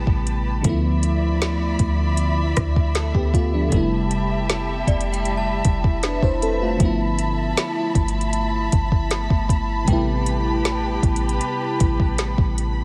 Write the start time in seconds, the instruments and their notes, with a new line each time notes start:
Already playing: fm electric piano C3 G3 A3 B3 E4, string section G4 B4 A5 B5
0.07 808-style bass A1, kick
0.27 closed hi-hat
0.62 808-style bass D2, fm electric piano D3 F3 A3, string section F3 D5 E5 B5, kick, closed hi-hat
0.67 fm electric piano B3 E4
1.03 closed hi-hat
1.42 snare, closed hi-hat
1.79 808-style bass D2, kick, closed hi-hat
2.17 closed hi-hat
2.57 808-style bass D2, kick, cross-stick, closed hi-hat
2.76 kick
2.95 fm electric piano A4, snare, closed hi-hat
3.15 808-style bass D2, fm electric piano B3 G4, kick
3.34 fm electric piano A3 F4, kick, closed hi-hat
3.54 fm electric piano F3 D4
3.69 808-style bass F1, fm electric piano C3 G3 A3, string section G4 A5 B5, kick, closed hi-hat
3.75 fm electric piano B3 E4
4.11 closed hi-hat
4.50 snare, closed hi-hat
4.87 808-style bass F1, synth bell D5, kick, closed hi-hat
5.01 closed hi-hat
5.12 synth bell G5, closed hi-hat
5.25 closed hi-hat
5.37 synth bell A5
5.65 808-style bass F1, kick, closed hi-hat
5.84 kick
6.03 fm electric piano D4 B4, snare, closed hi-hat
6.23 808-style bass F1, fm electric piano E4 C5, kick
6.42 fm electric piano C4 A4, closed hi-hat
6.62 fm electric piano A3 F4
6.77 808-style bass G1, fm electric piano D3 F3 A3, string section F3, kick, closed hi-hat
6.83 fm electric piano B3 E4
7.19 closed hi-hat
7.57 snare, closed hi-hat
7.95 808-style bass G1, kick, closed hi-hat
8.08 closed hi-hat
8.21 closed hi-hat
8.33 closed hi-hat
8.72 808-style bass G1, kick, closed hi-hat
8.92 kick
9.11 snare, closed hi-hat
9.30 808-style bass G1, kick
9.49 kick, closed hi-hat
9.85 808-style bass A1, fm electric piano C3 G3 A3, string section G4 B4, synth bell G5, kick, closed hi-hat
9.91 fm electric piano B3 E4
10.26 closed hi-hat
10.65 snare, closed hi-hat
11.03 808-style bass A1, kick, closed hi-hat
11.16 closed hi-hat
11.29 closed hi-hat
11.41 closed hi-hat
11.80 808-style bass A1, kick, closed hi-hat
12.00 kick
12.18 snare, closed hi-hat
12.38 808-style bass A1, kick
12.58 closed hi-hat